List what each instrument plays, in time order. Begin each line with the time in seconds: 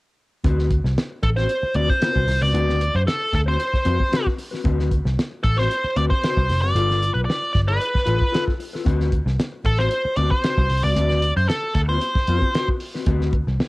0.44 picked electric bass D2, clean electric guitar C4 F#4 B4, kick, closed hi-hat
0.59 snare
0.70 kick, closed hi-hat
0.84 picked electric bass C2, muted clean electric guitar stroke, snare
0.97 muted clean electric guitar stroke, snare, closed hi-hat
1.11 muted clean electric guitar stroke
1.23 picked electric bass A1, lead electric guitar A4, kick, closed hi-hat
1.37 clean electric guitar C4 F#4 C5, lead electric guitar C5, snare
1.49 muted clean electric guitar stroke, closed hi-hat
1.63 muted clean electric guitar stroke, muted picked electric bass stroke
1.75 picked electric bass D2, clean electric guitar C4 F#4 B4, lead electric guitar D5, closed hi-hat
1.90 lead electric guitar C5, muted clean electric guitar stroke, kick
2.02 clean electric guitar C4 F#4 B4, snare, closed hi-hat
2.16 picked electric bass C2, kick
2.28 picked electric bass C2, muted clean electric guitar stroke, snare, open hi-hat
2.42 picked electric bass C#2, clean electric guitar C4 F#4 B4, lead electric guitar D5
2.54 picked electric bass D2, clean electric guitar C4 F#4 B4, closed hi-hat
2.70 snare
2.81 closed hi-hat
2.95 picked electric bass F#2, lead electric guitar C5, muted clean electric guitar stroke
3.07 lead electric guitar A4, muted clean electric guitar stroke, snare, closed hi-hat
3.21 muted clean electric guitar stroke
3.34 picked electric bass D2, lead electric guitar A4, kick, snare, closed hi-hat
3.46 clean electric guitar C4 F#4 C5, lead electric guitar C5
3.59 muted clean electric guitar stroke, closed hi-hat
3.73 muted clean electric guitar stroke, muted picked electric bass stroke, kick, snare
3.85 picked electric bass F2, clean electric guitar C4 F#4 B4, closed hi-hat
4.00 muted clean electric guitar stroke, kick
4.12 clean electric guitar C4 F#4 B4, snare, closed hi-hat
4.27 kick, snare
4.38 muted clean electric guitar stroke, open hi-hat
4.51 clean electric guitar C4 F#4 B4, snare
4.64 picked electric bass D2, clean electric guitar C4 F#4 B4, kick, closed hi-hat
4.80 snare
4.91 kick, closed hi-hat
5.05 picked electric bass C2, muted clean electric guitar stroke, snare
5.17 muted clean electric guitar stroke, snare, closed hi-hat
5.31 muted clean electric guitar stroke
5.43 picked electric bass A1, lead electric guitar A4, kick, closed hi-hat
5.57 clean electric guitar C4 F#4 C5, lead electric guitar C5, snare
5.70 muted clean electric guitar stroke, closed hi-hat
5.84 muted clean electric guitar stroke, muted picked electric bass stroke
5.96 picked electric bass D2, clean electric guitar C4 F#4 B4, lead electric guitar D5, closed hi-hat
6.10 lead electric guitar C5, muted clean electric guitar stroke, kick
6.23 clean electric guitar C4 F#4 B4, snare, closed hi-hat
6.37 picked electric bass C2, kick
6.49 picked electric bass F1, muted clean electric guitar stroke, snare, open hi-hat
6.62 picked electric bass F#1, clean electric guitar C4 F#4 B4, lead electric guitar D5
6.75 picked electric bass G1, clean electric guitar F4 A4 B4, closed hi-hat
6.91 snare
7.03 closed hi-hat
7.14 picked electric bass B1, lead electric guitar B4, muted clean electric guitar stroke
7.25 lead electric guitar D5, muted clean electric guitar stroke
7.30 snare, closed hi-hat
7.42 muted clean electric guitar stroke
7.53 picked electric bass G1, lead electric guitar D5, kick, snare, closed hi-hat
7.68 clean electric guitar F4 A4 D5, lead electric guitar B4
7.80 muted clean electric guitar stroke, closed hi-hat
7.94 muted clean electric guitar stroke, muted picked electric bass stroke, kick, snare
8.06 picked electric bass A1, clean electric guitar F4 A4 B4, closed hi-hat
8.19 muted clean electric guitar stroke, kick
8.32 clean electric guitar F4 A4 B4, snare, closed hi-hat
8.48 kick, snare
8.59 muted clean electric guitar stroke, open hi-hat
8.73 clean electric guitar F4 A4 B4, snare
8.85 picked electric bass D2, clean electric guitar C4 F#4 B4, kick, closed hi-hat
9.00 snare
9.12 kick, closed hi-hat
9.26 picked electric bass C2, muted clean electric guitar stroke, snare
9.39 muted clean electric guitar stroke, snare, closed hi-hat
9.53 muted clean electric guitar stroke
9.65 picked electric bass A1, lead electric guitar A4, kick, closed hi-hat
9.78 clean electric guitar C4 F#4 C5, lead electric guitar C5, snare
9.91 muted clean electric guitar stroke, closed hi-hat
10.05 muted clean electric guitar stroke, muted picked electric bass stroke
10.16 picked electric bass D2, clean electric guitar C4 F#4 B4, lead electric guitar D5, closed hi-hat
10.31 lead electric guitar C5, muted clean electric guitar stroke, kick
10.44 clean electric guitar C4 F#4 B4, snare, closed hi-hat
10.58 picked electric bass C2, kick
10.70 picked electric bass C2, muted clean electric guitar stroke, open hi-hat
10.84 picked electric bass C#2, clean electric guitar C4 F#4 B4, lead electric guitar D5
10.96 picked electric bass D2, clean electric guitar C4 F#4 B4, closed hi-hat
11.11 snare
11.22 closed hi-hat
11.37 picked electric bass F#2, lead electric guitar C5, muted clean electric guitar stroke
11.48 lead electric guitar A4, muted clean electric guitar stroke, snare, closed hi-hat
11.63 muted clean electric guitar stroke
11.75 picked electric bass D2, lead electric guitar A4, kick, snare, closed hi-hat
11.88 clean electric guitar C4 F#4 C5, lead electric guitar C5
12.02 muted clean electric guitar stroke, closed hi-hat
12.15 muted picked electric bass stroke, muted clean electric guitar stroke, kick, snare
12.27 picked electric bass F2, clean electric guitar C4 F#4 B4, closed hi-hat
12.42 muted clean electric guitar stroke, kick
12.55 clean electric guitar C4 F#4 B4, snare, closed hi-hat
12.68 kick
12.80 muted clean electric guitar stroke, open hi-hat
12.94 clean electric guitar C4 F#4 B4, snare
13.06 picked electric bass D2, clean electric guitar C4 F#4 B4, kick, closed hi-hat
13.21 snare
13.33 kick, closed hi-hat
13.47 picked electric bass C2, muted clean electric guitar stroke, snare
13.60 muted clean electric guitar stroke, snare, closed hi-hat